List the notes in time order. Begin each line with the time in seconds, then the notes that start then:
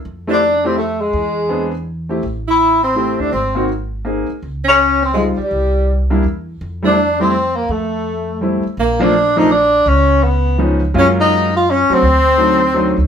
0.05 F2
0.27 A3 C4 D4 E4 G4
0.33 D4
0.64 A3 C4 E4 G4
0.78 A3
1.01 G#3
1.13 E2
1.49 B3 C4 D4 G#4
2.09 A3 C4 E4 G4
2.23 A1
2.48 E4
2.83 C4
2.95 A3 C4 E4 G4
3.19 D#2 D4
3.32 G#1 C4
3.55 A#3 C4 D#4 F#4
4.05 A#3 C4 D#4 G#4
4.29 muted upright bass stroke
4.42 C#2
4.64 C#4
5.02 C4
5.14 G3 G#3 C4 D#4 F4
5.37 G3, muted upright bass stroke
5.43 G3
5.51 C2
6.10 G3 A#3 D4 E4
6.24 E2
6.61 F2
6.83 G3 A3 C4 D4 E4
6.87 D4
7.19 G3 A3 C4 E4
7.56 A#3
7.69 F2 A3
8.41 G3 A3 C4 E4
8.65 muted upright bass stroke
8.77 A#1 A#3
8.99 F3 A3 A#3 C4 D4
9.36 F3 A3 A#3 C4 D4 D#4
9.51 D4
9.86 C#2 C#4
10.23 B3
10.58 F3 G#3 B3 C#4 D#4
10.94 F#2 F#3 G#3 A#3 C#4 F4
10.98 C#4
11.21 D#4
11.56 F4
11.70 C#4
11.90 F#3 A3 C4 D4 F#4, muted upright bass stroke
11.94 C4
12.02 D2
12.38 F#3 A3 C4 D4 D#4
12.74 F#3 A3 C4 D4 D#4
12.98 D2